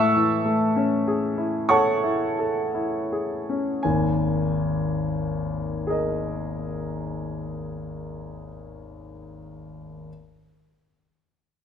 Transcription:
0.00 3.80 A2 medium
0.00 1.66 E5 medium
0.00 1.66 A5 medium
0.00 1.66 C#6 medium
0.00 1.70 E6 medium
0.16 0.63 E3 soft
0.45 0.94 A3 soft
0.76 1.25 C#4 soft
1.08 1.58 G#4 soft
1.38 1.90 E4 soft
1.69 2.24 A4 soft
1.69 3.79 C#5 soft
1.69 3.79 F#5 soft
1.69 3.79 A5 soft
1.69 3.82 C#6 medium
2.03 2.59 E4 soft
2.39 2.96 A4 soft
2.74 3.33 E4 soft
3.12 3.70 G#4 soft
3.49 3.84 C#4 soft
3.83 8.49 G#1 soft
3.83 8.49 D#2 soft
3.83 8.47 G#5 soft
5.87 9.36 G#4 soft
5.87 9.37 A#4 soft
5.87 9.38 D#5 soft

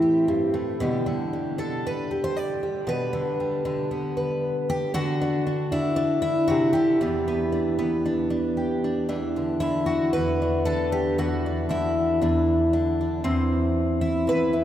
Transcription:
0.00 0.53 A2 medium
0.00 0.76 E3 medium
0.00 0.77 C4 medium
0.00 0.83 G4 medium
0.28 0.53 G2 medium
0.54 0.79 A2 medium
0.80 1.06 B2 medium
0.80 1.05 D3 medium
0.80 1.33 G3 soft
0.80 1.59 G4 medium
1.06 1.57 D3 medium
1.33 2.62 G3 soft
1.58 3.12 D3 medium
1.58 2.10 A4 medium
1.87 2.23 B4 medium
2.11 2.85 G4 medium
2.24 2.37 C5 loud
2.37 2.88 D5 loud
2.63 3.39 G3 soft
2.87 3.13 B2 medium
2.87 3.92 B4 loud
3.13 3.64 D3 medium
3.40 4.94 G3 soft
3.65 4.93 D3 medium
3.91 4.68 B3 medium
4.17 4.91 B4 medium
4.70 4.94 G4 loud
4.94 6.74 D3 medium
4.94 6.23 F#4 loud
5.21 5.46 D4 medium
5.47 5.71 D4 medium
5.72 5.96 D4 medium
5.72 6.21 E4 medium
5.96 6.74 D4 medium
6.22 6.99 E4 loud
6.48 6.75 C3 medium
6.48 6.72 F#4 loud
6.73 7.00 D3 medium
6.73 8.56 G4 medium
7.01 9.08 E2 medium
7.01 7.26 B3 soft
7.01 7.51 D4 medium
7.28 7.77 B3 medium
7.52 8.04 D4 medium
7.79 9.06 B3 medium
8.05 8.29 D4 medium
8.30 8.83 D4 medium
8.57 9.06 G4 medium
8.84 9.06 D4 medium
9.09 10.13 E2 medium
9.09 10.14 D4 medium
9.36 9.61 D3 soft
9.60 10.65 D3 medium
9.60 10.13 E4 medium
9.86 10.65 F#4 medium
10.13 11.17 E2 medium
10.13 11.18 B4 loud
10.42 11.16 D4 medium
10.65 11.68 D3 medium
10.65 10.92 A4 medium
10.92 11.18 G4 medium
11.18 12.20 E2 medium
11.18 12.22 F#4 medium
11.46 12.21 D4 soft
11.69 12.72 D3 medium
11.69 12.74 E4 loud
12.21 13.23 E2 medium
12.21 12.99 D4 medium
12.73 13.24 D3 medium
13.01 13.22 D4 soft
13.24 14.27 E2 medium
13.24 14.53 C4 medium
14.01 14.52 E4 medium
14.27 14.64 E2 medium
14.27 14.64 B4 medium
14.53 14.64 E4 medium

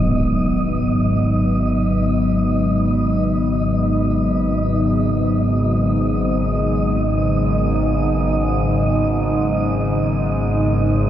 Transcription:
0.00 11.10 G#1 medium
0.00 11.10 G#2 medium
0.00 11.10 C#3 medium
0.00 11.10 F#3 medium
0.00 11.10 B3 medium
0.00 11.10 D#4 medium
0.00 11.10 D#5 medium
0.00 impact medium

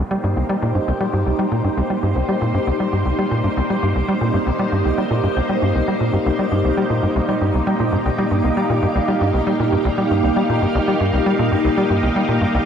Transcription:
0.00 12.65 A#3 medium
0.00 12.65 D#4 medium
0.00 12.65 G4 medium
0.00 8.17 C5 medium
0.00 12.65 D5 medium
0.11 0.18 G3 medium
0.24 0.35 G2 medium
0.37 0.44 C2 medium
0.49 0.57 G3 medium
0.62 0.73 A#2 medium
0.75 0.79 G2 medium
0.88 0.92 C2 medium
1.01 1.08 G3 medium
1.13 1.24 G2 medium
1.26 1.34 C2 medium
1.39 1.46 G3 medium
1.52 1.63 A#2 medium
1.64 1.69 G2 medium
1.77 1.82 C2 medium
1.90 1.98 G3 medium
2.03 2.14 G2 medium
2.16 2.23 C2 medium
2.29 2.36 G3 medium
2.42 2.53 A#2 medium
2.54 2.59 G2 medium
2.67 2.72 C2 loud
2.80 2.87 G3 medium
2.93 3.04 G2 medium
3.06 3.13 C2 medium
3.19 3.26 G3 medium
3.31 3.42 A#2 medium
3.44 3.49 G2 medium
3.57 3.61 C2 loud
3.70 3.77 G3 medium
3.83 3.94 G2 medium
3.96 4.03 C2 medium
4.08 4.16 G3 medium
4.21 4.32 A#2 medium
4.34 4.38 G2 medium
4.47 4.51 C2 medium
4.59 4.67 G3 medium
4.72 4.83 G2 medium
4.85 4.92 C2 medium
4.98 5.05 G3 medium
5.11 5.22 A#2 medium
5.24 5.28 G2 medium
5.37 5.41 C2 loud
5.49 5.57 G3 medium
5.62 5.73 G2 medium
5.75 5.82 C2 medium
5.88 5.95 G3 medium
6.01 6.12 A#2 medium
6.13 6.18 G2 medium
6.26 6.31 C2 loud
6.39 6.46 G3 medium
6.52 6.63 G2 medium
6.65 6.72 C2 medium
6.77 6.85 G3 medium
6.90 7.01 A#2 medium
7.03 7.07 G2 medium
7.16 7.20 C2 loud
7.29 7.36 G3 medium
7.41 7.53 G2 medium
7.54 7.62 C2 medium
7.67 7.74 G3 medium
7.80 7.91 A#2 medium
7.93 7.97 G2 medium
8.06 8.10 C2 medium
8.18 8.26 G3 medium
8.18 12.65 F5 medium
8.31 8.42 G2 medium
8.44 8.52 C2 medium
8.57 8.64 G3 medium
8.70 8.81 A#2 medium
8.83 8.87 G2 medium
8.95 9.00 C2 medium
9.08 9.16 G3 medium
9.21 9.32 G2 medium
9.34 9.41 C2 medium
9.47 9.54 G3 medium
9.60 9.71 A#2 medium
9.72 9.77 G2 medium
9.85 9.89 C2 loud
9.98 10.05 G3 medium
10.11 10.22 G2 medium
10.24 10.31 C2 medium
10.36 10.44 G3 medium
10.49 10.60 A#2 medium
10.62 10.67 G2 medium
10.75 10.79 C2 loud
10.88 10.95 G3 medium
11.01 11.12 G2 medium
11.13 11.21 C2 medium
11.26 11.34 G3 medium
11.39 11.50 A#2 medium
11.52 11.56 G2 medium
11.65 11.69 C2 loud
11.77 11.85 G3 medium
11.90 12.01 G2 medium
12.03 12.10 C2 medium
12.16 12.23 G3 medium
12.29 12.40 A#2 medium
12.41 12.46 G2 medium
12.54 12.59 C2 loud

